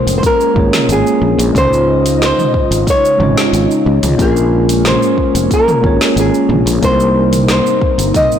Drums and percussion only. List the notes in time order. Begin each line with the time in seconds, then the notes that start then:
0.07 open hi-hat, cabasa
0.23 kick, open hi-hat, cabasa
0.41 cabasa
0.56 kick
0.73 snare, mid tom, open hi-hat, cabasa
0.89 open hi-hat, cabasa
1.07 cabasa
1.39 open hi-hat, cabasa
1.55 kick, mid tom, open hi-hat, cabasa
1.73 cabasa
2.06 open hi-hat, cabasa
2.22 snare, open hi-hat, cabasa
2.39 mid tom, cabasa
2.54 kick
2.72 open hi-hat, cabasa
2.87 kick, open hi-hat, cabasa
3.05 cabasa
3.20 mid tom
3.38 snare, open hi-hat, cabasa
3.54 open hi-hat, cabasa
3.71 cabasa
4.03 mid tom, open hi-hat, cabasa
4.19 kick, open hi-hat, cabasa
4.37 cabasa
4.69 open hi-hat, cabasa
4.85 snare, mid tom, open hi-hat, cabasa
5.03 cabasa
5.18 kick
5.35 open hi-hat, cabasa
5.51 kick, open hi-hat, cabasa
5.68 mid tom, cabasa
5.84 kick
6.01 snare, open hi-hat, cabasa
6.17 open hi-hat, cabasa
6.34 cabasa
6.50 mid tom
6.67 open hi-hat, cabasa
6.83 kick, open hi-hat, cabasa
7.00 cabasa
7.33 mid tom, open hi-hat, cabasa
7.48 snare, open hi-hat, cabasa
7.66 cabasa
7.81 kick
7.99 open hi-hat, cabasa
8.14 kick, mid tom, open hi-hat, cabasa
8.32 cabasa